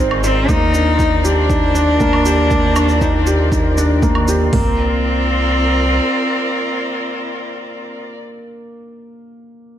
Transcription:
Already playing: analog synth bass G#1, string quartet C4 F4 A#4 D5, felt piano D#4 G#4 C5
0.00 felt piano C4
0.11 low woodblock
0.24 cello C4, felt piano C5, shaker
0.49 analog synth bass D#2, felt piano A#3, cello D#4, kick, shaker
0.74 felt piano D4, shaker
0.99 felt piano D#4, kick, shaker
1.25 cello D4, felt piano G4, shaker
1.50 felt piano D#4, kick, shaker
1.75 felt piano D4, shaker
2.00 felt piano A#3, kick, shaker
2.13 low woodblock
2.26 felt piano G4, shaker
2.51 felt piano A#3, kick, shaker
2.76 felt piano D4, low woodblock, shaker
2.89 shaker
3.01 felt piano D#4, kick, shaker
3.27 felt piano G4, shaker
3.52 felt piano D#4, kick, shaker
3.78 felt piano D4, shaker
4.02 felt piano A#3, kick, shaker
4.15 low woodblock
4.28 felt piano G4, shaker
4.53 analog synth bass C2, felt piano A#3, string quartet C4, cello C4, kick, floor tom, open hi-hat
4.61 string quartet F4
4.68 string quartet A#4
4.75 string quartet D5

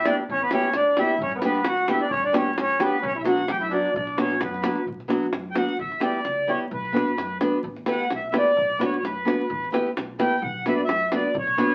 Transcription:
Already playing: upright bass B1
0.05 nylon-string guitar G3 B3 E4 G4, trumpet D4, accordion D5, davul high
0.29 upright bass E2, trumpet C#4, accordion C#5, davul low
0.42 trumpet B3, accordion B4
0.51 nylon-string guitar G3 B3 E4 G4, trumpet C#4, accordion C#5, davul high
0.63 davul high
0.74 upright bass B1, trumpet D4, accordion D5, davul high
0.97 nylon-string guitar G3 B3 E4 G4, trumpet E4, accordion E5, davul high
1.09 davul high
1.18 upright bass G2, trumpet C#4, accordion C#5, davul low
1.32 trumpet B3, accordion B4, davul high
1.37 trumpet B3, accordion A#4 B4
1.42 nylon-string guitar G3 B3 D4 G4, trumpet B3, accordion B4, davul high
1.54 davul high
1.65 upright bass D2, trumpet F#4, accordion F#5, davul high
1.77 davul high
1.88 nylon-string guitar G3 B3 D4 G4, trumpet E4, accordion E5, davul high
2.01 trumpet D4, accordion D5
2.11 upright bass G2, trumpet C#4, accordion C#5, davul low
2.24 trumpet D4, accordion D5, davul high
2.33 nylon-string guitar G3 B3 D4 G4, accordion C#5, davul high
2.37 trumpet C#4
2.58 upright bass F#2, trumpet C#4, davul high
2.62 accordion C#5
2.70 davul high
2.79 nylon-string guitar G3 B3 D4 G4, trumpet B3, accordion B4, davul high
3.02 upright bass B1, trumpet C#4, davul low
3.06 accordion C#5
3.16 trumpet E4, accordion E5
3.24 nylon-string guitar F#3 B3 D4 F#4, trumpet F#4, davul high
3.29 accordion F#5
3.38 davul high
3.48 upright bass F#2, trumpet G4, accordion G5, davul high
3.60 trumpet E4, accordion E5, davul high
3.70 nylon-string guitar F#3 B3 D4 F#4, trumpet D4, accordion D5
3.94 upright bass B1, trumpet D4, accordion D5, davul low
4.07 davul high
4.17 nylon-string guitar F#3 B3 D4 F#4, trumpet C#4, accordion C#5, davul high
4.31 davul high
4.41 upright bass F#2, trumpet B3, accordion B4, davul high
4.54 davul high
4.62 nylon-string guitar F#3 B3 D4 F#4, davul high
4.75 davul high
4.86 upright bass B1, davul low
5.00 davul high
5.08 nylon-string guitar F#3 B3 D4 F#4, davul high
5.23 davul high
5.33 upright bass F#2, davul high
5.51 nylon-string guitar F#3, accordion G5
5.55 nylon-string guitar B3 D4 F#4, accordion F#5, davul high
5.79 upright bass E2, accordion E5, davul low
5.92 davul high
6.00 nylon-string guitar G3 B3 E4 G4, accordion D5, davul high
6.15 davul high
6.25 upright bass C#2, davul high
6.47 nylon-string guitar G3 B3 E4 G4, accordion C#5
6.71 upright bass B1, accordion B4, davul low
6.85 davul high
6.93 nylon-string guitar B3 D4 F#4 B4, davul high
7.08 davul high
7.17 upright bass F#2, davul high
7.40 nylon-string guitar B3 D4 F#4 B4, davul high
7.63 upright bass E2, davul low
7.76 davul high
7.86 nylon-string guitar B3 E4 G4 B4, davul high
7.92 accordion F#5
8.00 davul high
8.10 upright bass B1, davul high
8.16 accordion E5
8.30 nylon-string guitar B3 E4 G4 B4, accordion E5
8.34 accordion D5, davul high
8.47 davul high
8.56 upright bass B1, davul low
8.70 davul high
8.79 nylon-string guitar B3 D4 F#4 B4, davul high
8.84 accordion C#5
8.94 accordion C#5, davul high
9.03 upright bass F#2, accordion B4, davul high
9.25 nylon-string guitar B3 D4 F#4 B4, davul high
9.50 upright bass E2, davul low
9.64 davul high
9.72 nylon-string guitar B3 E4 G4 B4, davul high
9.87 davul high
9.97 upright bass B1, davul high
10.19 nylon-string guitar B3 E4 G4 B4, accordion G5, davul high
10.42 upright bass B1, accordion F#5, davul low
10.66 nylon-string guitar B3 D4 F#4 B4, accordion E5, davul high
10.75 accordion D5, davul high
10.85 upright bass F#2, accordion E5
10.89 davul high
11.12 nylon-string guitar B3 D4 F#4 B4, accordion D5, davul high
11.35 upright bass B1, accordion C#5, davul low
11.47 davul high
11.57 nylon-string guitar B3 D4 F#4 B4, davul high
11.72 davul high

